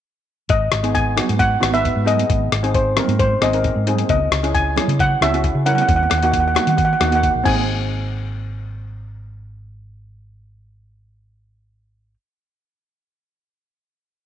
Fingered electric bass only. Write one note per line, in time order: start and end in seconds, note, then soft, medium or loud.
0.50 0.68 G#1 medium
0.72 1.18 G#1 medium
1.29 1.56 G#2 medium
1.62 1.89 G#1 medium
1.96 2.23 G#2 medium
2.30 2.48 G#1 medium
2.52 2.97 G#1 medium
3.08 3.35 G#2 medium
3.41 3.69 G#1 medium
3.76 4.02 G#2 medium
4.10 4.27 C#2 medium
4.31 4.77 C#2 medium
4.88 5.15 C#3 medium
5.21 5.48 C#2 medium
5.55 5.82 C#3 medium
5.88 6.06 D#2 medium
6.11 6.56 D#2 medium
6.67 6.94 D#3 medium
7.00 7.28 D#2 medium
7.35 7.44 A#1 medium
7.46 12.14 G#1 medium